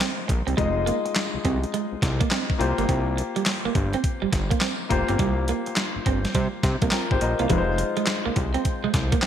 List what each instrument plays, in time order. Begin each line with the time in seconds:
Already playing: grand piano G#3 D#4 F4 C5
0.00 clean electric guitar C4, snare, clap, closed hi-hat
0.28 analog synth bass A#1, muted clean electric guitar stroke, kick, closed hi-hat
0.47 analog synth bass C2, clean electric guitar C4, closed hi-hat
0.57 analog synth bass F1, clean electric guitar G#3, grand piano G#3 D#4 F4 D#5, kick, closed hi-hat
0.86 clean electric guitar A#3, closed hi-hat
1.05 muted clean electric guitar stroke, closed hi-hat
1.15 snare, clap, closed hi-hat
1.34 analog synth bass C2
1.45 analog synth bass C2, clean electric guitar C4, kick, closed hi-hat
1.63 closed hi-hat
1.74 clean electric guitar G#3, closed hi-hat
1.92 analog synth bass C2
2.02 analog synth bass C2, muted clean electric guitar stroke, kick, snare, closed hi-hat
2.20 clean electric guitar A#3, kick, closed hi-hat
2.31 clean electric guitar C4, snare, clap, closed hi-hat
2.50 kick
2.58 analog synth bass C2, grand piano A#3 F4 G4 C5, muted clean electric guitar stroke, closed hi-hat
2.78 analog synth bass G1, clean electric guitar A#3, closed hi-hat
2.89 analog synth bass C2, clean electric guitar C4, kick, closed hi-hat
3.17 muted clean electric guitar stroke, closed hi-hat
3.36 clean electric guitar G3, closed hi-hat
3.46 snare, clap, closed hi-hat
3.65 analog synth bass G1, clean electric guitar A#3
3.75 analog synth bass G1, muted clean electric guitar stroke, kick, closed hi-hat
3.93 clean electric guitar C4, closed hi-hat
4.04 kick, closed hi-hat
4.22 analog synth bass G1, clean electric guitar G3
4.32 analog synth bass G1, muted clean electric guitar stroke, kick, snare, closed hi-hat
4.51 clean electric guitar A#3, kick, closed hi-hat
4.61 clean electric guitar C4, snare, clap, closed hi-hat
4.89 analog synth bass F1, grand piano A#3 F4 G4 C5, muted clean electric guitar stroke, kick, closed hi-hat
5.09 analog synth bass G1, clean electric guitar C4, closed hi-hat
5.19 analog synth bass C2, clean electric guitar G3, kick, closed hi-hat
5.48 clean electric guitar A#3, closed hi-hat
5.66 muted clean electric guitar stroke, closed hi-hat
5.76 snare, clap, closed hi-hat
5.96 analog synth bass G1
6.06 analog synth bass G1, clean electric guitar C4, kick, closed hi-hat
6.25 snare, closed hi-hat
6.35 analog synth bass C3, clean electric guitar G3, kick, closed hi-hat
6.63 analog synth bass C3, muted clean electric guitar stroke, kick, snare, closed hi-hat
6.82 analog synth bass C2, clean electric guitar A#3, kick, closed hi-hat
6.91 clean electric guitar C4, grand piano F4 A#4, snare, clap, closed hi-hat
7.11 analog synth bass G#1, grand piano G4 C5, kick
7.21 analog synth bass A#1, grand piano A#4 D#5, muted clean electric guitar stroke, closed hi-hat
7.39 analog synth bass C2, clean electric guitar A#3, grand piano C5 F5, closed hi-hat
7.49 analog synth bass F1, clean electric guitar F3, grand piano G#3 D#4 F4 B4, kick, closed hi-hat
7.58 grand piano C5
7.78 muted clean electric guitar stroke, closed hi-hat
7.97 clean electric guitar G#3, closed hi-hat
8.06 snare, clap, closed hi-hat
8.25 analog synth bass C2, clean electric guitar A#3
8.36 analog synth bass C2, muted clean electric guitar stroke, kick, closed hi-hat
8.54 clean electric guitar C4, closed hi-hat
8.65 kick, closed hi-hat
8.84 analog synth bass C2, clean electric guitar G#3
8.94 analog synth bass C2, muted clean electric guitar stroke, kick, snare, closed hi-hat
9.12 clean electric guitar A#3, kick, closed hi-hat
9.22 clean electric guitar C4, snare, clap, closed hi-hat